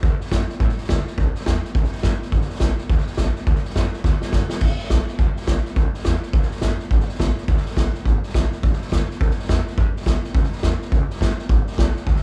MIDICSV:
0, 0, Header, 1, 4, 480
1, 0, Start_track
1, 0, Key_signature, 1, "major"
1, 0, Tempo, 286533
1, 47, Time_signature, 4, 2, 24, 8
1, 20484, End_track
2, 0, Start_track
2, 0, Title_t, "Upright bass"
2, 0, Program_c, 0, 32
2, 56, Note_on_c, 0, 38, 100
2, 296, Note_off_c, 0, 38, 0
2, 530, Note_on_c, 0, 42, 96
2, 773, Note_off_c, 0, 42, 0
2, 1018, Note_on_c, 0, 45, 97
2, 1258, Note_off_c, 0, 45, 0
2, 1490, Note_on_c, 0, 38, 84
2, 1733, Note_off_c, 0, 38, 0
2, 1969, Note_on_c, 0, 36, 98
2, 2213, Note_off_c, 0, 36, 0
2, 2447, Note_on_c, 0, 40, 92
2, 2693, Note_off_c, 0, 40, 0
2, 2932, Note_on_c, 0, 36, 92
2, 3176, Note_off_c, 0, 36, 0
2, 3416, Note_on_c, 0, 43, 82
2, 3658, Note_off_c, 0, 43, 0
2, 3899, Note_on_c, 0, 31, 108
2, 4140, Note_off_c, 0, 31, 0
2, 4372, Note_on_c, 0, 35, 101
2, 4616, Note_off_c, 0, 35, 0
2, 4857, Note_on_c, 0, 38, 95
2, 5099, Note_off_c, 0, 38, 0
2, 5332, Note_on_c, 0, 35, 86
2, 5576, Note_off_c, 0, 35, 0
2, 5816, Note_on_c, 0, 38, 96
2, 6059, Note_off_c, 0, 38, 0
2, 6300, Note_on_c, 0, 42, 94
2, 6541, Note_off_c, 0, 42, 0
2, 6774, Note_on_c, 0, 38, 92
2, 7018, Note_off_c, 0, 38, 0
2, 7256, Note_on_c, 0, 30, 92
2, 7499, Note_off_c, 0, 30, 0
2, 7736, Note_on_c, 0, 31, 104
2, 7979, Note_off_c, 0, 31, 0
2, 8224, Note_on_c, 0, 35, 90
2, 8464, Note_off_c, 0, 35, 0
2, 8703, Note_on_c, 0, 38, 92
2, 8943, Note_off_c, 0, 38, 0
2, 9176, Note_on_c, 0, 35, 85
2, 9419, Note_off_c, 0, 35, 0
2, 9661, Note_on_c, 0, 36, 101
2, 9902, Note_off_c, 0, 36, 0
2, 10132, Note_on_c, 0, 40, 90
2, 10377, Note_off_c, 0, 40, 0
2, 10616, Note_on_c, 0, 36, 92
2, 10859, Note_off_c, 0, 36, 0
2, 11093, Note_on_c, 0, 43, 92
2, 11337, Note_off_c, 0, 43, 0
2, 11574, Note_on_c, 0, 31, 105
2, 11818, Note_off_c, 0, 31, 0
2, 12055, Note_on_c, 0, 35, 99
2, 12298, Note_off_c, 0, 35, 0
2, 12534, Note_on_c, 0, 38, 90
2, 12778, Note_off_c, 0, 38, 0
2, 13017, Note_on_c, 0, 35, 91
2, 13259, Note_off_c, 0, 35, 0
2, 13493, Note_on_c, 0, 31, 106
2, 13737, Note_off_c, 0, 31, 0
2, 13984, Note_on_c, 0, 35, 94
2, 14223, Note_off_c, 0, 35, 0
2, 14469, Note_on_c, 0, 31, 92
2, 14706, Note_off_c, 0, 31, 0
2, 14944, Note_on_c, 0, 38, 81
2, 15183, Note_off_c, 0, 38, 0
2, 15426, Note_on_c, 0, 36, 98
2, 15664, Note_off_c, 0, 36, 0
2, 15908, Note_on_c, 0, 40, 97
2, 16145, Note_off_c, 0, 40, 0
2, 16385, Note_on_c, 0, 43, 94
2, 16623, Note_off_c, 0, 43, 0
2, 16865, Note_on_c, 0, 36, 86
2, 17103, Note_off_c, 0, 36, 0
2, 17339, Note_on_c, 0, 37, 104
2, 17580, Note_off_c, 0, 37, 0
2, 17820, Note_on_c, 0, 40, 97
2, 18060, Note_off_c, 0, 40, 0
2, 18301, Note_on_c, 0, 37, 96
2, 18540, Note_off_c, 0, 37, 0
2, 18787, Note_on_c, 0, 43, 87
2, 19023, Note_off_c, 0, 43, 0
2, 19254, Note_on_c, 0, 31, 108
2, 19495, Note_off_c, 0, 31, 0
2, 19742, Note_on_c, 0, 35, 99
2, 19980, Note_off_c, 0, 35, 0
2, 20212, Note_on_c, 0, 38, 95
2, 20453, Note_off_c, 0, 38, 0
2, 20484, End_track
3, 0, Start_track
3, 0, Title_t, "Muted upright bass strokes"
3, 357, Note_on_c, 9, 29, 65
3, 525, Note_off_c, 9, 29, 0
3, 822, Note_on_c, 9, 29, 66
3, 990, Note_off_c, 9, 29, 0
3, 1303, Note_on_c, 9, 29, 76
3, 1471, Note_off_c, 9, 29, 0
3, 1786, Note_on_c, 9, 29, 71
3, 1953, Note_off_c, 9, 29, 0
3, 2287, Note_on_c, 9, 29, 69
3, 2454, Note_off_c, 9, 29, 0
3, 2765, Note_on_c, 9, 29, 69
3, 2933, Note_off_c, 9, 29, 0
3, 3243, Note_on_c, 9, 29, 78
3, 3411, Note_off_c, 9, 29, 0
3, 3718, Note_on_c, 9, 29, 73
3, 3885, Note_off_c, 9, 29, 0
3, 4196, Note_on_c, 9, 29, 74
3, 4364, Note_off_c, 9, 29, 0
3, 4663, Note_on_c, 9, 29, 71
3, 4830, Note_off_c, 9, 29, 0
3, 5145, Note_on_c, 9, 29, 78
3, 5313, Note_off_c, 9, 29, 0
3, 5621, Note_on_c, 9, 29, 75
3, 5789, Note_off_c, 9, 29, 0
3, 6107, Note_on_c, 9, 29, 75
3, 6274, Note_off_c, 9, 29, 0
3, 6596, Note_on_c, 9, 29, 68
3, 6763, Note_off_c, 9, 29, 0
3, 7072, Note_on_c, 9, 29, 73
3, 7240, Note_off_c, 9, 29, 0
3, 8014, Note_on_c, 9, 29, 67
3, 8182, Note_off_c, 9, 29, 0
3, 8496, Note_on_c, 9, 29, 66
3, 8664, Note_off_c, 9, 29, 0
3, 8974, Note_on_c, 9, 29, 72
3, 9141, Note_off_c, 9, 29, 0
3, 9466, Note_on_c, 9, 29, 69
3, 9634, Note_off_c, 9, 29, 0
3, 9944, Note_on_c, 9, 29, 70
3, 10112, Note_off_c, 9, 29, 0
3, 10425, Note_on_c, 9, 29, 66
3, 10592, Note_off_c, 9, 29, 0
3, 10917, Note_on_c, 9, 29, 78
3, 11085, Note_off_c, 9, 29, 0
3, 11389, Note_on_c, 9, 29, 70
3, 11556, Note_off_c, 9, 29, 0
3, 11878, Note_on_c, 9, 29, 76
3, 12045, Note_off_c, 9, 29, 0
3, 12348, Note_on_c, 9, 29, 67
3, 12516, Note_off_c, 9, 29, 0
3, 12840, Note_on_c, 9, 29, 76
3, 13007, Note_off_c, 9, 29, 0
3, 13309, Note_on_c, 9, 29, 65
3, 13477, Note_off_c, 9, 29, 0
3, 13796, Note_on_c, 9, 29, 67
3, 13964, Note_off_c, 9, 29, 0
3, 14282, Note_on_c, 9, 29, 64
3, 14449, Note_off_c, 9, 29, 0
3, 14761, Note_on_c, 9, 29, 72
3, 14928, Note_off_c, 9, 29, 0
3, 15239, Note_on_c, 9, 29, 71
3, 15406, Note_off_c, 9, 29, 0
3, 15703, Note_on_c, 9, 29, 71
3, 15870, Note_off_c, 9, 29, 0
3, 16182, Note_on_c, 9, 29, 67
3, 16349, Note_off_c, 9, 29, 0
3, 16652, Note_on_c, 9, 29, 76
3, 16819, Note_off_c, 9, 29, 0
3, 17129, Note_on_c, 9, 29, 69
3, 17296, Note_off_c, 9, 29, 0
3, 17609, Note_on_c, 9, 29, 68
3, 17776, Note_off_c, 9, 29, 0
3, 18100, Note_on_c, 9, 29, 70
3, 18268, Note_off_c, 9, 29, 0
3, 18585, Note_on_c, 9, 29, 76
3, 18753, Note_off_c, 9, 29, 0
3, 19060, Note_on_c, 9, 29, 69
3, 19228, Note_off_c, 9, 29, 0
3, 19561, Note_on_c, 9, 29, 76
3, 19728, Note_off_c, 9, 29, 0
3, 20051, Note_on_c, 9, 29, 72
3, 20218, Note_off_c, 9, 29, 0
3, 20484, End_track
4, 0, Start_track
4, 0, Title_t, "Drums"
4, 50, Note_on_c, 9, 36, 117
4, 50, Note_on_c, 9, 38, 37
4, 217, Note_off_c, 9, 36, 0
4, 217, Note_off_c, 9, 38, 0
4, 340, Note_on_c, 9, 38, 40
4, 437, Note_off_c, 9, 38, 0
4, 437, Note_on_c, 9, 38, 36
4, 529, Note_off_c, 9, 38, 0
4, 529, Note_on_c, 9, 36, 89
4, 529, Note_on_c, 9, 38, 120
4, 529, Note_on_c, 9, 44, 95
4, 696, Note_off_c, 9, 36, 0
4, 697, Note_off_c, 9, 38, 0
4, 697, Note_off_c, 9, 44, 0
4, 823, Note_on_c, 9, 38, 33
4, 991, Note_off_c, 9, 38, 0
4, 995, Note_on_c, 9, 38, 41
4, 1008, Note_on_c, 9, 36, 121
4, 1153, Note_off_c, 9, 38, 0
4, 1153, Note_on_c, 9, 38, 32
4, 1176, Note_off_c, 9, 36, 0
4, 1298, Note_off_c, 9, 38, 0
4, 1298, Note_on_c, 9, 38, 37
4, 1398, Note_off_c, 9, 38, 0
4, 1398, Note_on_c, 9, 38, 34
4, 1491, Note_off_c, 9, 38, 0
4, 1491, Note_on_c, 9, 36, 82
4, 1491, Note_on_c, 9, 38, 112
4, 1491, Note_on_c, 9, 44, 83
4, 1658, Note_off_c, 9, 38, 0
4, 1658, Note_off_c, 9, 44, 0
4, 1659, Note_off_c, 9, 36, 0
4, 1788, Note_on_c, 9, 38, 36
4, 1956, Note_off_c, 9, 38, 0
4, 1973, Note_on_c, 9, 36, 112
4, 1980, Note_on_c, 9, 38, 37
4, 2140, Note_off_c, 9, 36, 0
4, 2148, Note_off_c, 9, 38, 0
4, 2259, Note_on_c, 9, 38, 38
4, 2350, Note_off_c, 9, 38, 0
4, 2350, Note_on_c, 9, 38, 36
4, 2448, Note_off_c, 9, 38, 0
4, 2448, Note_on_c, 9, 38, 107
4, 2448, Note_on_c, 9, 44, 84
4, 2451, Note_on_c, 9, 36, 89
4, 2616, Note_off_c, 9, 38, 0
4, 2616, Note_off_c, 9, 44, 0
4, 2619, Note_off_c, 9, 36, 0
4, 2754, Note_on_c, 9, 38, 34
4, 2921, Note_off_c, 9, 38, 0
4, 2922, Note_on_c, 9, 38, 36
4, 2930, Note_on_c, 9, 36, 112
4, 3078, Note_off_c, 9, 38, 0
4, 3078, Note_on_c, 9, 38, 35
4, 3097, Note_off_c, 9, 36, 0
4, 3216, Note_off_c, 9, 38, 0
4, 3216, Note_on_c, 9, 38, 33
4, 3309, Note_off_c, 9, 38, 0
4, 3309, Note_on_c, 9, 38, 36
4, 3401, Note_off_c, 9, 38, 0
4, 3401, Note_on_c, 9, 38, 104
4, 3401, Note_on_c, 9, 44, 83
4, 3408, Note_on_c, 9, 36, 89
4, 3568, Note_off_c, 9, 38, 0
4, 3568, Note_off_c, 9, 44, 0
4, 3575, Note_off_c, 9, 36, 0
4, 3715, Note_on_c, 9, 38, 31
4, 3878, Note_off_c, 9, 38, 0
4, 3878, Note_on_c, 9, 38, 36
4, 3890, Note_on_c, 9, 36, 112
4, 4039, Note_off_c, 9, 38, 0
4, 4039, Note_on_c, 9, 38, 34
4, 4058, Note_off_c, 9, 36, 0
4, 4177, Note_off_c, 9, 38, 0
4, 4177, Note_on_c, 9, 38, 40
4, 4269, Note_off_c, 9, 38, 0
4, 4269, Note_on_c, 9, 38, 37
4, 4355, Note_off_c, 9, 38, 0
4, 4355, Note_on_c, 9, 38, 123
4, 4355, Note_on_c, 9, 44, 85
4, 4367, Note_on_c, 9, 36, 86
4, 4523, Note_off_c, 9, 38, 0
4, 4523, Note_off_c, 9, 44, 0
4, 4534, Note_off_c, 9, 36, 0
4, 4656, Note_on_c, 9, 38, 34
4, 4824, Note_off_c, 9, 38, 0
4, 4843, Note_on_c, 9, 38, 39
4, 4850, Note_on_c, 9, 36, 115
4, 4988, Note_off_c, 9, 38, 0
4, 4988, Note_on_c, 9, 38, 34
4, 5017, Note_off_c, 9, 36, 0
4, 5133, Note_off_c, 9, 38, 0
4, 5133, Note_on_c, 9, 38, 33
4, 5238, Note_off_c, 9, 38, 0
4, 5238, Note_on_c, 9, 38, 37
4, 5317, Note_off_c, 9, 38, 0
4, 5317, Note_on_c, 9, 38, 105
4, 5317, Note_on_c, 9, 44, 86
4, 5330, Note_on_c, 9, 36, 86
4, 5484, Note_off_c, 9, 38, 0
4, 5484, Note_off_c, 9, 44, 0
4, 5498, Note_off_c, 9, 36, 0
4, 5623, Note_on_c, 9, 38, 35
4, 5790, Note_off_c, 9, 38, 0
4, 5796, Note_on_c, 9, 38, 36
4, 5810, Note_on_c, 9, 36, 113
4, 5950, Note_off_c, 9, 38, 0
4, 5950, Note_on_c, 9, 38, 33
4, 5978, Note_off_c, 9, 36, 0
4, 6107, Note_off_c, 9, 38, 0
4, 6107, Note_on_c, 9, 38, 36
4, 6198, Note_off_c, 9, 38, 0
4, 6198, Note_on_c, 9, 38, 38
4, 6292, Note_off_c, 9, 38, 0
4, 6292, Note_on_c, 9, 38, 118
4, 6292, Note_on_c, 9, 44, 87
4, 6294, Note_on_c, 9, 36, 88
4, 6460, Note_off_c, 9, 38, 0
4, 6460, Note_off_c, 9, 44, 0
4, 6462, Note_off_c, 9, 36, 0
4, 6588, Note_on_c, 9, 38, 33
4, 6756, Note_off_c, 9, 38, 0
4, 6771, Note_on_c, 9, 36, 117
4, 6773, Note_on_c, 9, 38, 68
4, 6939, Note_off_c, 9, 36, 0
4, 6940, Note_off_c, 9, 38, 0
4, 7061, Note_on_c, 9, 38, 69
4, 7229, Note_off_c, 9, 38, 0
4, 7241, Note_on_c, 9, 38, 92
4, 7241, Note_on_c, 9, 44, 92
4, 7251, Note_on_c, 9, 36, 88
4, 7409, Note_off_c, 9, 38, 0
4, 7409, Note_off_c, 9, 44, 0
4, 7418, Note_off_c, 9, 36, 0
4, 7530, Note_on_c, 9, 38, 90
4, 7698, Note_off_c, 9, 38, 0
4, 7719, Note_on_c, 9, 38, 39
4, 7719, Note_on_c, 9, 49, 99
4, 7729, Note_on_c, 9, 36, 112
4, 7887, Note_off_c, 9, 38, 0
4, 7887, Note_off_c, 9, 49, 0
4, 7897, Note_off_c, 9, 36, 0
4, 8017, Note_on_c, 9, 38, 35
4, 8108, Note_off_c, 9, 38, 0
4, 8108, Note_on_c, 9, 38, 37
4, 8210, Note_off_c, 9, 38, 0
4, 8210, Note_on_c, 9, 38, 112
4, 8210, Note_on_c, 9, 44, 96
4, 8213, Note_on_c, 9, 36, 91
4, 8378, Note_off_c, 9, 38, 0
4, 8378, Note_off_c, 9, 44, 0
4, 8381, Note_off_c, 9, 36, 0
4, 8503, Note_on_c, 9, 38, 36
4, 8671, Note_off_c, 9, 38, 0
4, 8680, Note_on_c, 9, 38, 35
4, 8692, Note_on_c, 9, 36, 115
4, 8847, Note_off_c, 9, 38, 0
4, 8859, Note_off_c, 9, 36, 0
4, 8982, Note_on_c, 9, 38, 37
4, 9081, Note_off_c, 9, 38, 0
4, 9081, Note_on_c, 9, 38, 33
4, 9168, Note_off_c, 9, 38, 0
4, 9168, Note_on_c, 9, 38, 115
4, 9168, Note_on_c, 9, 44, 83
4, 9173, Note_on_c, 9, 36, 90
4, 9335, Note_off_c, 9, 38, 0
4, 9335, Note_off_c, 9, 44, 0
4, 9340, Note_off_c, 9, 36, 0
4, 9466, Note_on_c, 9, 38, 35
4, 9634, Note_off_c, 9, 38, 0
4, 9637, Note_on_c, 9, 38, 38
4, 9654, Note_on_c, 9, 36, 115
4, 9804, Note_off_c, 9, 38, 0
4, 9821, Note_off_c, 9, 36, 0
4, 9949, Note_on_c, 9, 38, 38
4, 10031, Note_off_c, 9, 38, 0
4, 10031, Note_on_c, 9, 38, 37
4, 10129, Note_off_c, 9, 38, 0
4, 10129, Note_on_c, 9, 38, 113
4, 10129, Note_on_c, 9, 44, 93
4, 10133, Note_on_c, 9, 36, 86
4, 10296, Note_off_c, 9, 38, 0
4, 10296, Note_off_c, 9, 44, 0
4, 10301, Note_off_c, 9, 36, 0
4, 10427, Note_on_c, 9, 38, 34
4, 10594, Note_off_c, 9, 38, 0
4, 10602, Note_on_c, 9, 38, 39
4, 10610, Note_on_c, 9, 36, 118
4, 10756, Note_off_c, 9, 38, 0
4, 10756, Note_on_c, 9, 38, 36
4, 10778, Note_off_c, 9, 36, 0
4, 10903, Note_off_c, 9, 38, 0
4, 10903, Note_on_c, 9, 38, 38
4, 10994, Note_off_c, 9, 38, 0
4, 10994, Note_on_c, 9, 38, 34
4, 11081, Note_off_c, 9, 38, 0
4, 11081, Note_on_c, 9, 38, 107
4, 11081, Note_on_c, 9, 44, 90
4, 11093, Note_on_c, 9, 36, 84
4, 11248, Note_off_c, 9, 38, 0
4, 11248, Note_off_c, 9, 44, 0
4, 11260, Note_off_c, 9, 36, 0
4, 11379, Note_on_c, 9, 38, 33
4, 11546, Note_off_c, 9, 38, 0
4, 11568, Note_on_c, 9, 38, 35
4, 11572, Note_on_c, 9, 36, 115
4, 11725, Note_off_c, 9, 38, 0
4, 11725, Note_on_c, 9, 38, 35
4, 11740, Note_off_c, 9, 36, 0
4, 11870, Note_off_c, 9, 38, 0
4, 11870, Note_on_c, 9, 38, 37
4, 11974, Note_off_c, 9, 38, 0
4, 11974, Note_on_c, 9, 38, 37
4, 12056, Note_on_c, 9, 36, 93
4, 12058, Note_off_c, 9, 38, 0
4, 12058, Note_on_c, 9, 38, 119
4, 12058, Note_on_c, 9, 44, 88
4, 12223, Note_off_c, 9, 36, 0
4, 12225, Note_off_c, 9, 38, 0
4, 12225, Note_off_c, 9, 44, 0
4, 12353, Note_on_c, 9, 38, 33
4, 12521, Note_off_c, 9, 38, 0
4, 12525, Note_on_c, 9, 38, 37
4, 12534, Note_on_c, 9, 36, 122
4, 12678, Note_off_c, 9, 38, 0
4, 12678, Note_on_c, 9, 38, 35
4, 12701, Note_off_c, 9, 36, 0
4, 12826, Note_off_c, 9, 38, 0
4, 12826, Note_on_c, 9, 38, 35
4, 12916, Note_off_c, 9, 38, 0
4, 12916, Note_on_c, 9, 38, 35
4, 13012, Note_on_c, 9, 36, 88
4, 13014, Note_off_c, 9, 38, 0
4, 13014, Note_on_c, 9, 38, 106
4, 13014, Note_on_c, 9, 44, 92
4, 13179, Note_off_c, 9, 36, 0
4, 13182, Note_off_c, 9, 38, 0
4, 13182, Note_off_c, 9, 44, 0
4, 13305, Note_on_c, 9, 38, 36
4, 13472, Note_off_c, 9, 38, 0
4, 13489, Note_on_c, 9, 38, 38
4, 13494, Note_on_c, 9, 36, 107
4, 13656, Note_off_c, 9, 38, 0
4, 13661, Note_off_c, 9, 36, 0
4, 13786, Note_on_c, 9, 38, 38
4, 13886, Note_off_c, 9, 38, 0
4, 13886, Note_on_c, 9, 38, 40
4, 13978, Note_on_c, 9, 36, 84
4, 13983, Note_off_c, 9, 38, 0
4, 13983, Note_on_c, 9, 38, 120
4, 13983, Note_on_c, 9, 44, 93
4, 14145, Note_off_c, 9, 36, 0
4, 14150, Note_off_c, 9, 38, 0
4, 14150, Note_off_c, 9, 44, 0
4, 14273, Note_on_c, 9, 38, 34
4, 14441, Note_off_c, 9, 38, 0
4, 14460, Note_on_c, 9, 38, 37
4, 14463, Note_on_c, 9, 36, 127
4, 14617, Note_off_c, 9, 38, 0
4, 14617, Note_on_c, 9, 38, 34
4, 14631, Note_off_c, 9, 36, 0
4, 14766, Note_off_c, 9, 38, 0
4, 14766, Note_on_c, 9, 38, 36
4, 14873, Note_off_c, 9, 38, 0
4, 14873, Note_on_c, 9, 38, 33
4, 14944, Note_on_c, 9, 36, 86
4, 14945, Note_off_c, 9, 38, 0
4, 14945, Note_on_c, 9, 38, 102
4, 14945, Note_on_c, 9, 44, 90
4, 15111, Note_off_c, 9, 36, 0
4, 15112, Note_off_c, 9, 38, 0
4, 15112, Note_off_c, 9, 44, 0
4, 15253, Note_on_c, 9, 38, 33
4, 15421, Note_off_c, 9, 38, 0
4, 15425, Note_on_c, 9, 36, 125
4, 15428, Note_on_c, 9, 38, 35
4, 15589, Note_off_c, 9, 38, 0
4, 15589, Note_on_c, 9, 38, 34
4, 15592, Note_off_c, 9, 36, 0
4, 15734, Note_off_c, 9, 38, 0
4, 15734, Note_on_c, 9, 38, 37
4, 15817, Note_off_c, 9, 38, 0
4, 15817, Note_on_c, 9, 38, 37
4, 15901, Note_off_c, 9, 38, 0
4, 15901, Note_on_c, 9, 36, 90
4, 15901, Note_on_c, 9, 38, 123
4, 15901, Note_on_c, 9, 44, 95
4, 16069, Note_off_c, 9, 36, 0
4, 16069, Note_off_c, 9, 38, 0
4, 16069, Note_off_c, 9, 44, 0
4, 16200, Note_on_c, 9, 38, 33
4, 16367, Note_off_c, 9, 38, 0
4, 16372, Note_on_c, 9, 38, 36
4, 16378, Note_on_c, 9, 36, 117
4, 16540, Note_off_c, 9, 38, 0
4, 16545, Note_off_c, 9, 36, 0
4, 16686, Note_on_c, 9, 38, 34
4, 16772, Note_off_c, 9, 38, 0
4, 16772, Note_on_c, 9, 38, 35
4, 16856, Note_on_c, 9, 36, 86
4, 16858, Note_off_c, 9, 38, 0
4, 16858, Note_on_c, 9, 38, 112
4, 16858, Note_on_c, 9, 44, 87
4, 17024, Note_off_c, 9, 36, 0
4, 17025, Note_off_c, 9, 38, 0
4, 17025, Note_off_c, 9, 44, 0
4, 17152, Note_on_c, 9, 38, 35
4, 17320, Note_off_c, 9, 38, 0
4, 17329, Note_on_c, 9, 38, 36
4, 17331, Note_on_c, 9, 36, 114
4, 17477, Note_off_c, 9, 38, 0
4, 17477, Note_on_c, 9, 38, 31
4, 17498, Note_off_c, 9, 36, 0
4, 17623, Note_off_c, 9, 38, 0
4, 17623, Note_on_c, 9, 38, 36
4, 17714, Note_off_c, 9, 38, 0
4, 17714, Note_on_c, 9, 38, 36
4, 17807, Note_off_c, 9, 38, 0
4, 17807, Note_on_c, 9, 38, 121
4, 17807, Note_on_c, 9, 44, 94
4, 17813, Note_on_c, 9, 36, 88
4, 17974, Note_off_c, 9, 38, 0
4, 17974, Note_off_c, 9, 44, 0
4, 17980, Note_off_c, 9, 36, 0
4, 18115, Note_on_c, 9, 38, 35
4, 18283, Note_off_c, 9, 38, 0
4, 18293, Note_on_c, 9, 36, 119
4, 18296, Note_on_c, 9, 38, 39
4, 18461, Note_off_c, 9, 36, 0
4, 18463, Note_off_c, 9, 38, 0
4, 18595, Note_on_c, 9, 38, 35
4, 18694, Note_off_c, 9, 38, 0
4, 18694, Note_on_c, 9, 38, 34
4, 18777, Note_on_c, 9, 36, 83
4, 18788, Note_off_c, 9, 38, 0
4, 18788, Note_on_c, 9, 38, 114
4, 18788, Note_on_c, 9, 44, 91
4, 18944, Note_off_c, 9, 36, 0
4, 18955, Note_off_c, 9, 38, 0
4, 18955, Note_off_c, 9, 44, 0
4, 19074, Note_on_c, 9, 38, 35
4, 19242, Note_off_c, 9, 38, 0
4, 19252, Note_on_c, 9, 38, 38
4, 19254, Note_on_c, 9, 36, 125
4, 19420, Note_off_c, 9, 38, 0
4, 19422, Note_off_c, 9, 36, 0
4, 19543, Note_on_c, 9, 38, 35
4, 19635, Note_off_c, 9, 38, 0
4, 19635, Note_on_c, 9, 38, 35
4, 19734, Note_on_c, 9, 36, 98
4, 19744, Note_off_c, 9, 38, 0
4, 19744, Note_on_c, 9, 38, 119
4, 19744, Note_on_c, 9, 44, 94
4, 19902, Note_off_c, 9, 36, 0
4, 19911, Note_off_c, 9, 38, 0
4, 19911, Note_off_c, 9, 44, 0
4, 20034, Note_on_c, 9, 38, 33
4, 20202, Note_off_c, 9, 38, 0
4, 20214, Note_on_c, 9, 36, 117
4, 20219, Note_on_c, 9, 38, 35
4, 20371, Note_off_c, 9, 38, 0
4, 20371, Note_on_c, 9, 38, 33
4, 20381, Note_off_c, 9, 36, 0
4, 20484, Note_off_c, 9, 38, 0
4, 20484, End_track
0, 0, End_of_file